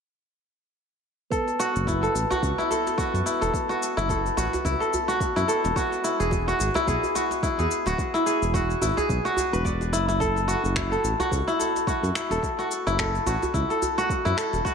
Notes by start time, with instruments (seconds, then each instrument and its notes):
1.30 singing bowl B3 B4, kora A4, kick, shaker
1.48 djembe slap, shaker
1.59 kora F#4, shaker
1.75 analog synth bass F#1, shaker
1.87 kora E4, kick, djembe tone, shaker
2.03 kora A4, shaker
2.15 analog synth bass A1, djembe tone, shaker
2.31 kora F#4, djembe slap, djembe bass, shaker
2.43 analog synth bass C#2, kick, shaker
2.58 kora E4, djembe tone, shaker
2.70 kora A4, djembe tone, shaker
2.87 djembe slap, shaker
2.98 kora F#4, kick, shaker
3.14 analog synth bass F#2, djembe slap, djembe tone, shaker
3.26 kora E4, shaker
3.41 analog synth bass E1, kora A4, djembe slap, shaker
3.54 kick, shaker
3.69 kora F#4, djembe slap, shaker
3.83 shaker
3.97 analog synth bass F#1, kora E4, shaker
4.09 kora A4, kick, djembe tone, shaker
4.26 shaker
4.37 analog synth bass A1, kora F#4, djembe tone, djembe bass, shaker
4.53 djembe slap, djembe bass, shaker
4.65 analog synth bass C#2, kora E4, kick, shaker
4.80 kora A4, shaker
4.93 djembe bass, shaker
5.08 kora F#4, shaker
5.20 kick, shaker
5.36 analog synth bass F#2, kora E4, djembe slap, djembe tone, shaker
5.48 kora A4, shaker
5.64 analog synth bass E1, djembe slap, djembe tone, shaker
5.76 kora F#4, kick, shaker
5.92 djembe slap, shaker
6.04 kora E4, shaker
6.20 analog synth bass E1, kora G#4, shaker
6.31 kick, djembe tone, shaker
6.48 kora F#4, shaker
6.59 analog synth bass G#1, djembe tone, shaker
6.74 kora E4, djembe slap, djembe bass, shaker
6.87 analog synth bass B1, kora G#4, kick, shaker
7.03 djembe tone, shaker
7.15 kora F#4, djembe tone, shaker
7.31 djembe slap, shaker
7.43 kora E4, kick, shaker
7.59 analog synth bass E2, kora G#4, djembe slap, djembe tone, shaker
7.71 shaker
7.86 analog synth bass D1, kora F#4, djembe slap, shaker
7.98 kick, shaker
8.14 kora E4, djembe slap, shaker
8.26 kora G#4, shaker
8.42 analog synth bass E1, shaker
8.54 kora F#4, kick, djembe tone, shaker
8.70 shaker
8.81 analog synth bass G#1, kora E4, djembe tone, djembe bass, shaker
8.97 kora G#4, djembe slap, djembe bass, shaker
9.09 analog synth bass B1, kick, shaker
9.25 kora F#4, shaker
9.37 djembe bass, shaker
9.53 analog synth bass E1, kora B4, shaker
9.65 kora D5, kick, shaker
9.81 djembe slap, djembe tone, shaker
9.93 analog synth bass F#1, kora E4, shaker
10.08 kora E4, djembe slap, djembe tone, shaker
10.20 kora A4, kick, shaker
10.36 djembe slap, shaker
10.48 kora F#4, shaker
10.64 analog synth bass F#1, shaker
10.76 kora E4, finger snap, kick, djembe tone, shaker
10.92 kora A4, shaker
11.04 analog synth bass A1, djembe tone, shaker
11.20 kora F#4, djembe slap, djembe bass, shaker
11.31 analog synth bass C#2, kick, shaker
11.48 kora E4, djembe tone, shaker
11.59 kora A4, djembe tone, shaker
11.76 djembe slap, shaker
11.87 kora F#4, kick, shaker
12.03 analog synth bass F#2, djembe slap, djembe tone, shaker
12.15 kora E4, finger snap, shaker
12.30 analog synth bass E1, kora A4, djembe slap, shaker
12.43 kick, shaker
12.59 kora F#4, djembe slap, shaker
12.71 shaker
12.86 analog synth bass F#1, kora E4, shaker
12.98 kora A4, finger snap, kick, djembe tone, shaker
13.15 shaker
13.26 analog synth bass A1, kora F#4, djembe tone, djembe bass, shaker
13.43 djembe slap, djembe bass, shaker
13.54 analog synth bass C#2, kora E4, kick, shaker
13.70 kora A4, shaker
13.82 djembe bass, shaker
13.98 kora F#4, shaker
14.10 kick, shaker
14.25 analog synth bass F#2, kora E4, djembe slap, djembe tone, shaker
14.37 kora A4, finger snap, shaker
14.53 analog synth bass E1, djembe slap, djembe tone, shaker
14.65 kora F#4, kick, shaker